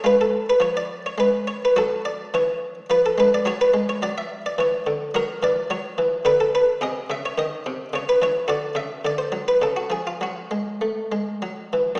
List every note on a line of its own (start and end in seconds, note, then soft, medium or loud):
0.04 0.45 G#3 medium
0.04 1.72 F4 soft
0.04 0.20 B4 medium
0.21 0.48 A4 medium
0.50 0.63 B4 medium
0.60 1.02 F3 soft
0.60 0.76 C#5 medium
0.77 1.05 D5 medium
1.06 1.20 C#5 medium
1.18 1.59 G#3 soft
1.18 1.44 B4 medium
1.47 1.62 C#5 medium
1.65 1.78 B4 medium
1.76 2.17 F#3 medium
1.76 2.86 F#4 soft
1.76 2.01 A4 medium
2.05 2.33 D5 medium
2.34 2.74 E3 soft
2.34 2.90 C#5 medium
2.90 3.17 F3 medium
2.90 3.05 B4 medium
3.06 3.19 A4 medium
3.18 3.45 G#3 soft
3.18 3.33 B4 medium
3.34 3.48 D5 medium
3.45 3.73 F#3 medium
3.45 5.10 F#4 soft
3.45 3.61 C#5 medium
3.61 3.89 B4 medium
3.74 4.01 G#3 medium
3.89 4.03 C#5 medium
4.02 4.43 F#3 medium
4.02 4.17 D5 medium
4.18 4.41 E5 medium
4.46 4.59 D5 medium
4.58 4.85 E3 medium
4.58 4.83 C#5 medium
4.87 5.13 D3 soft
5.14 5.41 F#3 medium
5.14 6.22 F#4 soft
5.14 5.43 A#4 medium
5.43 5.69 E3 medium
5.43 5.67 D5 medium
5.70 5.97 F#3 medium
5.70 6.26 C#5 medium
5.98 6.25 E3 medium
6.25 6.65 D3 medium
6.25 6.40 B4 medium
6.40 6.54 A4 medium
6.55 6.82 B4 medium
6.81 7.07 C3 medium
6.81 7.89 G#4 soft
6.81 7.06 D#5 medium
7.10 7.36 C#3 medium
7.10 7.24 E5 medium
7.25 7.38 C#5 medium
7.38 7.64 D#3 soft
7.38 7.85 D#5 medium
7.66 7.92 C3 medium
7.93 8.19 C#3 medium
7.93 8.08 C#5 medium
8.09 8.22 B4 medium
8.22 8.48 E3 soft
8.22 8.50 C#5 medium
8.48 8.75 D3 medium
8.48 9.00 F#4 soft
8.48 8.73 D5 medium
8.75 9.02 C#3 medium
8.75 9.05 E5 medium
9.05 9.32 D3 soft
9.05 9.20 D5 medium
9.18 9.48 C5 medium
9.32 9.61 F#3 soft
9.48 9.63 B4 medium
9.62 9.91 C#3 soft
9.62 9.78 A4 medium
9.76 9.92 F#4 medium
9.90 10.20 F3 soft
9.90 10.07 G#4 medium
10.07 10.23 F4 medium
10.21 10.51 F#3 soft
10.21 11.74 F#4 medium
10.51 10.81 G#3 soft
10.81 11.11 A3 soft
11.12 11.41 G#3 soft
11.42 11.72 F#3 soft
11.73 11.99 E3 soft
11.95 11.99 F#2 soft